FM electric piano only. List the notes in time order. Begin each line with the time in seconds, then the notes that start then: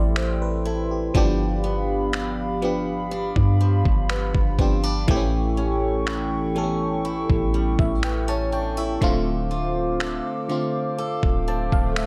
Already playing: E3 A3 C4 G4 D5 E5
0.17 C5
0.42 B4
0.67 A4
0.91 G4
1.14 F3 B3 D4 G4
2.62 F3 B3 D4 G4
4.58 F3 B3 D4 G4
5.08 E3 A3 C4 G4
5.16 C#4
6.55 E3 A3 B3 A4
6.64 C#4
7.80 E5
8.04 G5
8.29 A5
8.53 G5
8.78 E5
9.01 D3 A3 C4 F4
10.49 D3 A3 C4 F4
11.48 A5
11.73 F5
11.98 E5